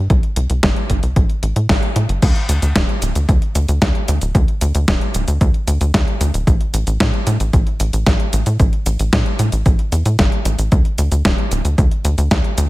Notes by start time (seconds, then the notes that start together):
0.10 C2, kick, closed hi-hat
0.23 closed hi-hat
0.36 C2, closed hi-hat
0.50 C2, closed hi-hat
0.63 G1, kick, snare, closed hi-hat
0.76 closed hi-hat
0.90 G1, kick, closed hi-hat
1.03 C2, closed hi-hat
1.16 A1, kick, closed hi-hat
1.30 closed hi-hat
1.43 A1, closed hi-hat
1.56 A2, closed hi-hat
1.69 A1, kick, snare, closed hi-hat
1.83 closed hi-hat
1.96 A2, closed hi-hat
2.09 G1, closed hi-hat
2.22 D2, kick, closed hi-hat, crash, cabasa
2.36 closed hi-hat
2.49 D2, closed hi-hat, cabasa
2.62 D2, closed hi-hat, cabasa
2.76 D1, kick, snare, closed hi-hat, cabasa
2.89 closed hi-hat
3.02 D1, closed hi-hat, cabasa
3.15 D2, closed hi-hat, cabasa
3.29 D2, kick, closed hi-hat, cabasa
3.42 closed hi-hat
3.55 D2, closed hi-hat, cabasa
3.68 D2, closed hi-hat, cabasa
3.82 D2, kick, snare, closed hi-hat, cabasa
3.95 closed hi-hat
4.08 D2, closed hi-hat, cabasa
4.21 D1, closed hi-hat, cabasa
4.35 D2, kick, closed hi-hat, cabasa
4.48 closed hi-hat
4.61 D2, closed hi-hat, cabasa
4.75 D2, closed hi-hat, cabasa
4.88 D1, kick, snare, closed hi-hat, cabasa
5.01 closed hi-hat
5.14 D1, closed hi-hat, cabasa
5.28 D2, closed hi-hat, cabasa
5.41 D2, kick, closed hi-hat, cabasa
5.54 closed hi-hat
5.67 D2, closed hi-hat, cabasa
5.81 D2, closed hi-hat, cabasa
5.94 D2, kick, snare, closed hi-hat, cabasa
6.08 closed hi-hat
6.21 D2, closed hi-hat, cabasa
6.34 D1, closed hi-hat, cabasa
6.47 A1, kick, closed hi-hat, cabasa
6.61 closed hi-hat
6.74 A1, closed hi-hat, cabasa
6.87 A1, closed hi-hat, cabasa
7.00 A2, kick, snare, closed hi-hat, cabasa
7.14 closed hi-hat
7.27 A2, closed hi-hat, cabasa
7.40 A1, closed hi-hat, cabasa
7.53 A1, kick, closed hi-hat, cabasa
7.67 closed hi-hat
7.80 A1, closed hi-hat, cabasa
7.93 A1, closed hi-hat, cabasa
8.06 A1, kick, snare, closed hi-hat, cabasa
8.20 closed hi-hat
8.33 A1, closed hi-hat, cabasa
8.46 A2, closed hi-hat, cabasa
8.60 A1, kick, closed hi-hat, cabasa
8.73 closed hi-hat
8.86 A1, closed hi-hat, cabasa
8.99 A1, closed hi-hat, cabasa
9.13 A2, kick, snare, closed hi-hat, cabasa
9.26 closed hi-hat
9.39 A2, closed hi-hat, cabasa
9.52 A1, closed hi-hat, cabasa
9.66 A1, kick, closed hi-hat, cabasa
9.79 closed hi-hat
9.92 E2, closed hi-hat, cabasa
10.06 A2, closed hi-hat, cabasa
10.19 G1, kick, snare, closed hi-hat, cabasa
10.32 closed hi-hat
10.45 A1, closed hi-hat, cabasa
10.59 A1, closed hi-hat, cabasa
10.72 D2, kick, closed hi-hat, cabasa
10.85 closed hi-hat
10.98 D2, closed hi-hat, cabasa
11.12 D2, closed hi-hat, cabasa
11.25 D1, kick, snare, closed hi-hat, cabasa
11.38 closed hi-hat
11.51 D1, closed hi-hat, cabasa
11.65 D2, closed hi-hat, cabasa
11.78 D2, kick, closed hi-hat, cabasa
11.91 closed hi-hat
12.05 D2, closed hi-hat, cabasa
12.18 D2, closed hi-hat, cabasa
12.31 D2, kick, snare, closed hi-hat, cabasa
12.44 closed hi-hat
12.58 D2, closed hi-hat, cabasa